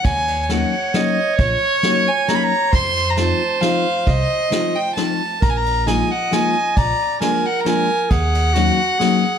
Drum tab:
RD |xxx-x-|x-x-x-|xxx-x-|x-x-x-|
SD |--o-o-|--o-o-|--o-o-|--o-o-|
BD |o-----|o-----|o-----|o-----|

RD |xxx-x-|x-x-x-|xxx-x-|
SD |--o-o-|--o-o-|--o-o-|
BD |o-----|o-----|o-----|